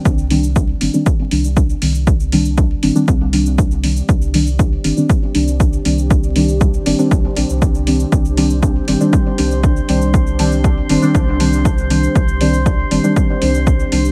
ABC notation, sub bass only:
X:1
M:4/4
L:1/16
Q:1/4=119
K:Cm
V:1 name="Sub bass" clef=bass
C,,4- C,, z G,,, z3 C,,3 z C,,2- | C,,4- C,, z G,,, z C,,6- C,, z | C,,4- C,, z G,,, z3 C,,3 z C,,2- | C,,4- C,, z G,,, z C,, z B,,, C,,4 z |
C,,4- C,, z G,,, z3 C,,3 z C,,2- | C,,4- C,, z G,,, z C,,6- C,, z | C,,4- C,, z G,,, z3 C,,3 z C,,2 |]